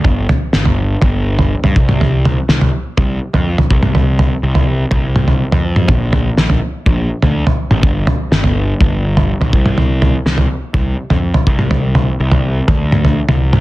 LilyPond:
<<
  \new Staff \with { instrumentName = "Picked electric bass" } { \clef bass \time 4/4 \key f \mixolydian \tempo 4 = 124 g,,8 r8 g,,4 g,,4~ g,,16 g,16 c,8~ | c,4 c,8 r8 c,8 r16 f,8 r16 c,8~ | c,4 c,4 c,4~ c,16 f,8. | bes,,4 bes,,8 r8 bes,,8 r16 d,8 r8 a,,16 |
g,,8 r8 g,,4 g,,4~ g,,16 b,,16 c,8~ | c,4 c,8 r8 c,8 r16 f,8 r16 c,8~ | c,4 c,4 d,4~ d,16 c,8. | }
  \new DrumStaff \with { instrumentName = "Drums" } \drummode { \time 4/4 <bd tomfh>8 tomfh8 sn16 tomfh8. <bd tomfh>8. tomfh16 r16 tomfh16 bd16 toml16 | tomfh8 tomfh8 sn16 tomfh8. <bd tomfh>8. tomfh16 r16 tomfh16 bd16 toml16 | tomfh8 tomfh8 r16 tomfh8. <bd tomfh>8 toml16 tomfh16 r16 tomfh8 toml16 | <bd tomfh>8 tomfh8 sn16 tomfh8. <bd tomfh>8. tomfh16 r16 tomfh8 toml16 |
<bd tomfh>8 tomfh8 sn16 tomfh8. <bd tomfh>8. tomfh16 r16 tomfh16 bd16 toml16 | tomfh8 tomfh8 sn16 tomfh8. <bd tomfh>8. tomfh16 r16 tomfh16 bd16 toml16 | tomfh8 tomfh8 r16 tomfh8. <bd tomfh>8 toml16 tomfh16 r16 tomfh8 toml16 | }
>>